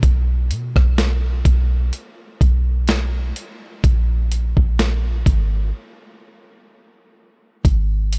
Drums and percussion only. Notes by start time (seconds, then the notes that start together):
0.03 kick, closed hi-hat
0.51 closed hi-hat
0.76 kick, cross-stick
0.98 snare, closed hi-hat
1.45 kick, closed hi-hat
1.93 closed hi-hat
2.41 kick, closed hi-hat
2.88 snare, closed hi-hat
3.36 closed hi-hat
3.84 kick, closed hi-hat
4.32 closed hi-hat
4.57 kick
4.79 snare, closed hi-hat
5.26 kick, closed hi-hat
7.65 kick, closed hi-hat
8.13 closed hi-hat